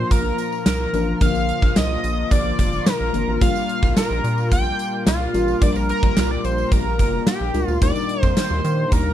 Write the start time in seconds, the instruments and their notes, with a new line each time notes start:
Already playing: analog synth pad A#2 F3 A#3 F4, fm electric piano F3 A#3 D4 A#4, analog synth lead C5, violin section C6
0.11 analog synth bass A#1, analog synth lead A#4, violin section A#5, kick, closed hi-hat, tambourine
0.38 closed hi-hat, tambourine
0.52 tambourine
0.66 analog synth bass C2, analog synth lead A#4, violin section A#5, snare, closed hi-hat, tambourine
0.93 analog synth bass A1, fm electric piano F3 A#3 D4 A#4, closed hi-hat, tambourine
1.21 analog synth bass A#1, fm electric piano D3 F3 A#3 A#4, analog synth lead F5, violin section F6, kick, closed hi-hat, tambourine
1.35 tambourine
1.49 closed hi-hat
1.62 analog synth bass A#1, kick, tambourine
1.76 analog synth bass C2, analog synth lead D#5, violin section D#6, snare, closed hi-hat, tambourine
2.04 analog synth bass A#1, closed hi-hat, tambourine
2.31 analog synth bass A#1, analog synth lead D5, violin section D6, kick, closed hi-hat, tambourine
2.59 analog synth bass F1, kick, closed hi-hat, tambourine
2.73 tambourine
2.86 analog synth lead A#4, violin section A#5, snare, closed hi-hat, tambourine
3.00 analog synth bass A#1
3.13 analog synth bass G#1, fm electric piano F3 A#3 D4 A#4, closed hi-hat, tambourine
3.28 analog synth bass A1
3.41 analog synth bass A#1, fm electric piano G3 D4 F4 A#4, analog synth pad G3, analog synth lead F5, violin section F6, kick, closed hi-hat, tambourine
3.56 tambourine
3.69 closed hi-hat
3.83 analog synth bass C2, kick, tambourine
3.97 analog synth lead A#4, violin section A#5, snare, closed hi-hat, tambourine
4.10 analog synth bass A#1
4.24 analog synth bass A#2, closed hi-hat, tambourine
4.38 tambourine
4.51 analog synth bass A#1, analog synth lead G5, violin section G6, kick, closed hi-hat, tambourine
4.79 closed hi-hat, tambourine
5.07 analog synth bass C2, analog synth lead F4, violin section F5, snare, closed hi-hat, tambourine
5.34 analog synth bass A1, fm electric piano G3 D4 F4 A#4, closed hi-hat, tambourine
5.48 tambourine
5.61 analog synth bass A#1, fm electric piano G3 D4 F4 A#4, analog synth lead D5, violin section D6, kick, closed hi-hat, tambourine
5.75 analog synth lead A#4, violin section A#5, tambourine
5.89 analog synth lead A#4, violin section A#5, closed hi-hat
6.03 analog synth bass A#1, kick
6.17 analog synth bass C2, snare, closed hi-hat, tambourine
6.31 analog synth lead D5, violin section D6
6.44 analog synth bass A#1, analog synth lead C5, violin section C6, closed hi-hat, tambourine
6.58 tambourine
6.72 analog synth bass A#1, analog synth lead A#4, violin section A#5, kick, closed hi-hat, tambourine
6.99 analog synth bass F1, kick, closed hi-hat, tambourine
7.27 analog synth lead G4, violin section G5, snare, closed hi-hat, tambourine
7.41 analog synth bass A#1
7.54 analog synth bass C#2, fm electric piano G3 D4 F4 A#4, closed hi-hat, tambourine
7.68 analog synth bass D2, tambourine
7.81 analog synth bass D#2, analog synth pad D#3 G3, fm electric piano G3 D4 D#4 A#4, analog synth lead D5, violin section D6, kick, closed hi-hat, tambourine
7.96 tambourine
8.09 closed hi-hat
8.22 analog synth bass F2, analog synth lead C5, violin section C6, kick, tambourine
8.37 analog synth lead C5, violin section C6, snare, closed hi-hat, tambourine
8.50 analog synth bass D#2
8.64 analog synth bass D#3, closed hi-hat, tambourine
8.92 analog synth bass D#2, analog synth lead A#4, violin section A#5, kick, closed hi-hat, tambourine